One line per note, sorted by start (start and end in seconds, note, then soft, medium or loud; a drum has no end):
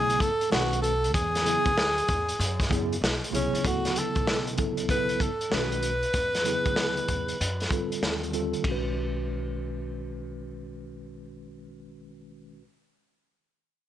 0.00 0.14 B1 loud
0.00 0.28 C#3 medium
0.00 0.28 F#3 medium
0.00 0.29 A3 medium
0.00 0.28 B3 medium
0.00 0.29 E4 medium
0.00 0.22 G#4 loud
0.10 closed hi-hat soft
0.20 0.51 A4 loud
0.20 kick medium
0.20 closed hi-hat medium
0.41 closed hi-hat soft
0.50 1.14 B1 loud
0.50 0.90 D#3 medium
0.50 0.91 G#3 medium
0.50 0.91 C#4 medium
0.50 0.81 F#4 loud
0.50 0.92 F#4 medium
0.50 0.92 B4 medium
0.50 snare loud
0.73 closed hi-hat medium
0.82 1.12 A4 loud
0.82 closed hi-hat medium
1.04 closed hi-hat soft
1.14 1.56 E2 medium
1.14 2.98 G#4 loud
1.14 kick loud
1.14 closed hi-hat medium
1.35 snare soft
1.35 closed hi-hat medium
1.43 1.69 C#3 medium
1.43 1.70 F#3 medium
1.43 1.70 B3 medium
1.43 1.71 E4 medium
1.43 closed hi-hat medium
1.47 1.71 G#4 medium
1.65 2.00 D2 medium
1.65 kick medium
1.65 closed hi-hat soft
1.78 snare loud
1.98 closed hi-hat medium
2.08 2.33 E2 medium
2.08 kick medium
2.08 closed hi-hat medium
2.29 closed hi-hat medium
2.39 2.64 F#2 loud
2.39 closed hi-hat medium
2.60 kick medium
2.60 snare soft
2.60 closed hi-hat medium
2.69 2.96 F#2 loud
2.69 2.94 C#3 medium
2.69 2.95 F#3 medium
2.69 2.95 B3 medium
2.69 2.96 E4 medium
2.69 2.96 G#4 medium
2.69 kick medium
2.69 closed hi-hat medium
2.93 closed hi-hat medium
3.01 3.18 B1 medium
3.01 snare loud
3.24 closed hi-hat medium
3.31 3.49 C2 medium
3.31 3.61 C#3 medium
3.31 3.62 F#3 medium
3.31 3.63 B3 medium
3.31 3.64 E4 medium
3.31 3.65 G#4 medium
3.31 closed hi-hat medium
3.35 3.68 C#4 medium
3.53 3.62 C#2 medium
3.53 closed hi-hat soft
3.62 4.06 D2 medium
3.62 4.53 C#3 medium
3.62 4.53 F#3 soft
3.62 4.54 B3 medium
3.62 4.54 E4 soft
3.62 4.54 A4 medium
3.62 kick loud
3.62 closed hi-hat medium
3.67 4.00 F#4 medium
3.85 snare soft
3.85 closed hi-hat medium
3.96 4.59 A4 medium
3.96 closed hi-hat medium
4.15 4.59 B1 medium
4.15 kick medium
4.15 closed hi-hat soft
4.27 snare loud
4.47 closed hi-hat medium
4.56 4.89 D2 medium
4.56 4.87 C#3 medium
4.56 4.88 F#3 medium
4.56 4.88 B3 medium
4.56 4.89 E4 medium
4.56 4.90 A4 medium
4.56 kick medium
4.56 closed hi-hat medium
4.77 closed hi-hat medium
4.88 5.14 B1 medium
4.88 5.28 C#3 medium
4.88 5.28 F#3 medium
4.88 5.29 B3 medium
4.88 5.29 E4 medium
4.88 5.30 A4 medium
4.88 5.24 B4 loud
4.88 kick medium
4.88 closed hi-hat medium
5.09 closed hi-hat soft
5.20 5.53 A4 medium
5.20 kick medium
5.20 closed hi-hat medium
5.41 closed hi-hat soft
5.50 6.02 B1 medium
5.50 5.90 D#3 medium
5.50 5.91 G#3 medium
5.50 5.91 C#4 medium
5.50 5.92 F#4 medium
5.50 7.98 B4 medium
5.50 5.92 B4 medium
5.50 snare loud
5.72 closed hi-hat soft
5.83 closed hi-hat medium
6.03 closed hi-hat soft
6.14 6.56 E2 medium
6.14 kick medium
6.14 closed hi-hat medium
6.35 snare soft
6.35 closed hi-hat soft
6.44 7.34 C#3 medium
6.44 7.34 F#3 medium
6.44 7.35 B3 medium
6.44 7.35 E4 medium
6.44 7.36 G#4 medium
6.44 closed hi-hat medium
6.66 7.00 D2 medium
6.66 kick medium
6.66 closed hi-hat soft
6.76 snare medium
6.97 closed hi-hat soft
7.08 7.33 E2 medium
7.08 kick medium
7.08 closed hi-hat medium
7.28 closed hi-hat soft
7.41 7.65 F#2 loud
7.41 closed hi-hat medium
7.60 snare soft
7.60 closed hi-hat soft
7.69 8.30 D3 medium
7.69 8.31 G3 medium
7.69 8.32 C4 medium
7.69 8.33 F4 medium
7.69 8.33 A4 medium
7.69 kick medium
7.69 closed hi-hat medium
7.92 closed hi-hat soft
8.02 8.52 D#2 medium
8.02 snare loud
8.23 closed hi-hat soft
8.31 8.63 D3 medium
8.31 8.64 G3 medium
8.31 8.64 C4 medium
8.31 8.65 F4 medium
8.31 8.65 A4 medium
8.31 closed hi-hat medium
8.53 12.57 D#3 medium
8.53 closed hi-hat soft
8.61 12.60 B1 medium
8.61 12.59 G#3 medium
8.61 12.61 C#4 medium
8.61 kick medium
8.61 ride medium
8.68 12.62 F#4 medium
8.68 12.64 B4 medium